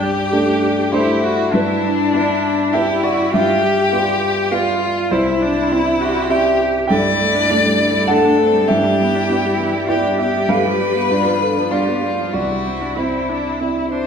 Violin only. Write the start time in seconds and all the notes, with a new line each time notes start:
Already playing: G4
0.92 E4
1.51 D4
2.73 G4
3.03 F#4
3.33 G4
4.52 F4
5.11 E4
6.30 G4
6.90 D5
8.08 A4
8.67 G4
9.87 G4
10.20 G4
10.49 B4
11.71 F4
12.33 F#4
12.97 E4
13.90 C5